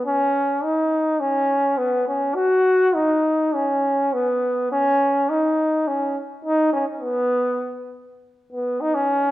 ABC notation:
X:1
M:2/4
L:1/16
Q:"Swing" 1/4=103
K:C#dor
V:1 name="Trombone"
C4 D4 | C4 B,2 C2 | F4 D4 | C4 B,4 |
C4 D4 | C2 z2 D2 C2 | B,6 z2 | z2 B,2 D C3 |]